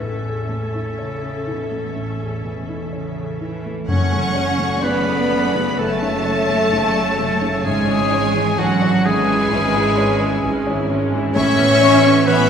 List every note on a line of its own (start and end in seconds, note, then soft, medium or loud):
0.00 1.91 A1 soft
0.00 0.87 A2 soft
0.00 3.91 A2 soft
0.00 0.48 A3 soft
0.00 3.65 C#4 medium
0.00 0.97 E4 soft
0.00 3.41 A4 medium
0.00 3.65 A4 soft
0.00 3.65 E5 soft
0.25 0.64 E2 soft
0.49 0.89 A3 soft
0.49 1.94 A3 soft
0.75 1.14 E4 soft
0.98 1.43 C#3 medium
0.98 2.91 E4 soft
0.98 1.38 C#5 soft
1.23 1.62 A4 soft
1.46 1.95 B2 soft
1.46 2.43 E3 soft
1.46 1.86 E4 soft
1.71 2.10 A3 soft
1.94 3.86 A1 soft
1.94 2.44 A2 soft
1.94 4.35 A3 soft
2.20 2.59 E2 soft
2.43 2.92 B2 soft
2.43 3.41 E3 soft
2.43 2.83 A3 soft
2.69 3.08 E4 soft
2.92 3.41 C#3 medium
2.92 3.93 E4 soft
2.92 3.32 C#5 soft
3.16 3.56 A4 soft
3.41 3.89 E3 medium
3.41 3.94 E3 soft
3.41 3.80 E4 soft
3.66 3.90 A3 soft
3.88 4.73 F#1 medium
3.88 5.27 F#2 medium
3.88 5.74 F#2 medium
3.88 7.69 F#2 medium
3.88 4.11 A3 medium
3.88 4.12 C#4 medium
3.88 4.80 C#4 medium
3.88 4.81 C#4 medium
3.88 4.85 C#5 medium
3.88 4.84 C#5 medium
3.88 4.80 F#5 medium
3.88 4.80 C#6 loud
4.12 7.18 C#3 soft
4.12 4.37 F#3 medium
4.12 4.51 A3 soft
4.12 4.35 A3 medium
4.36 4.58 A3 medium
4.36 6.95 A3 soft
4.36 4.60 C#4 medium
4.36 4.74 C#5 soft
4.59 4.84 F#3 medium
4.59 4.97 A3 soft
4.59 4.81 A3 soft
4.82 5.68 F#1 medium
4.82 5.21 C#3 soft
4.82 5.05 A3 medium
4.82 5.78 B3 medium
4.82 5.79 B3 medium
4.82 5.06 C#4 medium
4.82 5.78 B4 medium
4.82 5.80 B4 medium
4.82 5.78 D5 medium
4.82 5.78 B5 medium
5.06 5.31 F#3 medium
5.06 5.29 A3 medium
5.06 5.45 A4 soft
5.06 6.48 A4 medium
5.30 5.53 A3 medium
5.30 5.69 A3 medium
5.30 5.55 C#4 medium
5.30 5.77 F#5 medium
5.54 5.93 C#3 soft
5.54 5.78 F#3 medium
5.54 5.77 A3 medium
5.54 6.01 C#6 medium
5.78 6.61 F#1 medium
5.78 7.65 A3 loud
5.78 6.01 A3 medium
5.78 7.65 A3 medium
5.78 6.17 A3 medium
5.78 6.00 C#4 medium
5.78 7.64 A4 medium
5.78 7.61 A4 medium
5.78 7.62 C#5 medium
5.78 6.24 F#5 medium
5.78 7.65 A5 loud
6.02 6.40 C#3 soft
6.02 6.26 F#3 medium
6.02 6.25 A3 medium
6.02 9.28 C#6 medium
6.25 6.48 A3 medium
6.25 6.49 C#4 medium
6.25 6.63 C#5 medium
6.25 7.69 F#5 medium
6.49 6.73 F#3 medium
6.49 6.86 A3 medium
6.49 6.73 A3 medium
6.49 7.69 A4 medium
6.72 7.54 F#1 medium
6.72 7.10 C#3 medium
6.72 6.95 A3 medium
6.72 6.95 C#4 medium
6.72 8.58 C#5 medium
6.95 7.20 F#3 medium
6.95 7.41 A3 medium
6.95 7.18 A3 medium
6.95 7.33 C#5 medium
7.19 7.69 C#3 medium
7.19 7.56 A3 medium
7.19 7.41 A3 medium
7.19 7.42 C#4 medium
7.42 7.65 C#3 medium
7.42 7.66 F#3 medium
7.42 7.69 A3 medium
7.42 7.65 A3 medium
7.64 8.47 G#1 medium
7.64 9.47 G#2 medium
7.64 11.39 G#2 medium
7.64 8.59 G#3 medium
7.64 7.87 G#3 medium
7.64 8.57 G#3 medium
7.64 7.87 C#4 medium
7.64 8.60 G#4 medium
7.64 8.56 C#5 medium
7.64 8.57 G#5 loud
7.87 8.11 E3 medium
7.87 11.40 E3 medium
7.87 8.25 C#4 medium
7.87 8.11 E4 medium
8.11 8.35 G#3 medium
8.11 8.35 C#4 medium
8.11 10.66 C#4 medium
8.11 8.49 C#5 medium
8.34 8.58 E3 medium
8.34 8.72 C#4 medium
8.34 8.58 E4 medium
8.34 8.82 E4 medium
8.58 9.41 G#1 medium
8.58 8.96 E3 medium
8.58 9.05 F#3 medium
8.58 9.06 F#3 medium
8.58 8.80 G#3 medium
8.58 8.80 C#4 medium
8.58 9.07 F#4 medium
8.58 9.05 A4 medium
8.58 10.19 C#5 medium
8.58 9.05 F#5 loud
8.82 9.06 E3 medium
8.82 9.05 E4 medium
8.82 10.43 E4 medium
8.82 9.20 C#5 medium
9.05 10.89 G#3 medium
9.05 10.90 G#3 medium
9.05 9.29 G#3 medium
9.05 9.43 C#4 medium
9.05 9.29 C#4 medium
9.05 10.89 G#4 medium
9.05 10.90 B4 medium
9.05 9.51 E5 medium
9.05 10.90 G#5 loud
9.29 9.52 E3 medium
9.29 9.66 G#3 medium
9.29 9.52 E4 medium
9.29 9.74 C#6 medium
9.52 10.32 G#1 medium
9.52 9.73 G#3 medium
9.52 9.88 C#4 medium
9.52 9.73 C#4 medium
9.52 9.97 E5 medium
9.75 9.97 E3 medium
9.75 10.11 G#3 medium
9.75 9.97 E4 medium
9.75 12.50 C#6 medium
9.97 10.20 G#3 medium
9.97 10.20 C#4 medium
9.97 10.34 C#5 medium
9.97 12.50 E5 medium
10.20 10.44 E3 medium
10.20 10.57 C#4 medium
10.20 10.44 E4 medium
10.20 12.27 C#5 medium
10.43 11.25 G#1 medium
10.43 10.80 G#3 medium
10.43 10.65 G#3 medium
10.43 10.65 C#4 medium
10.43 12.04 E4 medium
10.67 10.90 E3 medium
10.67 11.12 C#4 medium
10.67 10.90 E4 medium
10.67 11.04 C#5 medium
10.90 11.39 G#3 medium
10.90 11.13 G#3 medium
10.90 11.27 C#4 medium
10.90 11.13 C#4 medium
11.12 11.36 E3 medium
11.12 11.35 G#3 medium
11.12 12.50 C#4 medium
11.12 11.36 E4 medium
11.35 12.50 A1 medium
11.35 12.50 A2 medium
11.35 12.24 E3 medium
11.35 12.23 C#4 loud
11.35 12.24 C#4 medium
11.35 12.29 C#5 loud
11.35 12.28 C#5 loud
11.35 12.23 E5 loud
11.35 12.23 C#6 loud
11.59 12.50 E3 medium
11.59 11.95 B3 medium
11.81 12.50 B3 medium
11.81 12.18 C#5 medium
12.03 12.41 B3 medium
12.27 12.50 E3 medium
12.27 12.50 B3 loud
12.27 12.50 C#4 medium
12.27 12.50 B4 loud
12.27 12.50 C#5 medium
12.27 12.50 E5 loud
12.27 12.50 B5 loud